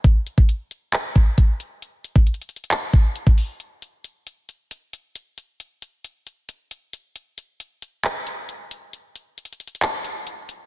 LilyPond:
\new DrumStaff \with { instrumentName = "Drums" } \drummode { \time 4/4 \tempo 4 = 135 <hh bd>8 hh16 bd16 hh8 hh8 <hc hh>8 <hh bd>8 <hh bd>8 hh8 | hh8 hh16 bd16 \tuplet 3/2 { hh16 hh16 hh16 hh16 hh16 hh16 } <hc hh>8 <hh bd>8 hh16 bd16 hho8 | hh8 hh8 hh8 hh8 hh8 hh8 hh8 hh8 | hh8 hh8 hh8 hh8 hh8 hh8 hh8 hh8 |
hh8 hh8 hh8 hh8 <hc hh>8 hh8 hh8 hh8 | hh8 hh8 \tuplet 3/2 { hh16 hh16 hh16 hh16 hh16 hh16 } <hc hh>8 hh8 hh8 hh8 | }